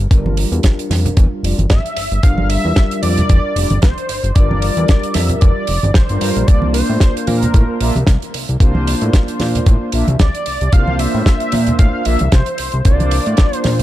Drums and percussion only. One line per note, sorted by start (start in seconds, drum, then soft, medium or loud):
0.11 kick loud
0.11 closed hi-hat medium
0.26 high conga medium
0.37 open hi-hat loud
0.52 closed hi-hat soft
0.63 kick loud
0.63 snare loud
0.63 closed hi-hat medium
0.79 closed hi-hat medium
0.91 snare medium
0.91 open hi-hat loud
0.91 high conga medium
1.05 closed hi-hat medium
1.05 low conga medium
1.17 kick loud
1.17 closed hi-hat medium
1.44 open hi-hat loud
1.59 closed hi-hat medium
1.59 high conga medium
1.70 kick loud
1.70 snare loud
1.70 closed hi-hat medium
1.86 closed hi-hat medium
1.97 open hi-hat loud
2.12 closed hi-hat soft
2.23 kick loud
2.23 closed hi-hat medium
2.38 high conga medium
2.50 open hi-hat loud
2.76 kick loud
2.76 snare loud
2.76 closed hi-hat medium
2.91 closed hi-hat medium
3.03 open hi-hat loud
3.03 high conga medium
3.17 closed hi-hat medium
3.17 low conga medium
3.29 kick loud
3.29 closed hi-hat medium
3.56 open hi-hat loud
3.70 closed hi-hat medium
3.70 high conga medium
3.82 kick loud
3.82 snare loud
3.82 closed hi-hat medium
3.98 closed hi-hat soft
4.09 open hi-hat loud
4.24 closed hi-hat medium
4.36 kick loud
4.36 closed hi-hat medium
4.51 high conga medium
4.62 open hi-hat loud
4.77 closed hi-hat medium
4.88 kick loud
4.88 snare loud
4.88 closed hi-hat medium
5.03 closed hi-hat medium
5.14 snare medium
5.14 open hi-hat loud
5.14 high conga medium
5.29 closed hi-hat medium
5.29 low conga medium
5.41 kick loud
5.41 closed hi-hat medium
5.67 open hi-hat loud
5.83 closed hi-hat soft
5.83 high conga medium
5.94 kick loud
5.94 snare loud
5.94 closed hi-hat medium
6.09 closed hi-hat medium
6.21 open hi-hat loud
6.36 closed hi-hat medium
6.48 kick loud
6.48 closed hi-hat medium
6.62 high conga medium
6.74 open hi-hat loud
7.00 kick loud
7.00 snare loud
7.00 closed hi-hat medium
7.17 closed hi-hat medium
7.27 open hi-hat medium
7.27 high conga medium
7.42 closed hi-hat medium
7.42 low conga medium
7.54 kick loud
7.54 closed hi-hat medium
7.81 open hi-hat loud
7.96 closed hi-hat soft
7.96 high conga medium
8.07 kick loud
8.07 snare loud
8.07 closed hi-hat medium
8.22 closed hi-hat soft
8.34 open hi-hat loud
8.49 closed hi-hat soft
8.60 kick loud
8.60 closed hi-hat medium
8.75 high conga medium
8.87 open hi-hat loud
9.01 closed hi-hat medium
9.13 kick medium
9.13 snare medium
9.13 closed hi-hat medium
9.28 closed hi-hat medium
9.40 snare medium
9.40 open hi-hat loud
9.40 high conga medium
9.55 closed hi-hat medium
9.55 low conga medium
9.66 kick loud
9.66 closed hi-hat medium
9.92 open hi-hat loud
10.08 closed hi-hat medium
10.08 high conga medium
10.19 kick loud
10.19 snare loud
10.19 closed hi-hat medium
10.35 closed hi-hat medium
10.46 open hi-hat loud
10.61 closed hi-hat soft
10.72 kick loud
10.72 closed hi-hat medium
10.88 high conga medium
10.99 open hi-hat loud
11.26 kick loud
11.26 snare loud
11.26 closed hi-hat medium
11.40 closed hi-hat medium
11.52 open hi-hat loud
11.52 high conga medium
11.67 closed hi-hat medium
11.67 low conga medium
11.79 kick loud
11.79 closed hi-hat medium
12.05 open hi-hat loud
12.19 closed hi-hat medium
12.19 high conga medium
12.32 kick loud
12.32 snare loud
12.32 closed hi-hat medium
12.46 closed hi-hat medium
12.58 open hi-hat loud
12.72 closed hi-hat medium
12.85 kick loud
12.85 closed hi-hat medium
13.00 closed hi-hat medium
13.00 high conga medium
13.11 open hi-hat loud
13.26 closed hi-hat soft
13.37 kick loud
13.37 snare loud
13.37 closed hi-hat medium
13.53 closed hi-hat medium
13.64 snare medium
13.64 open hi-hat loud
13.64 high conga medium
13.79 closed hi-hat medium
13.79 low conga medium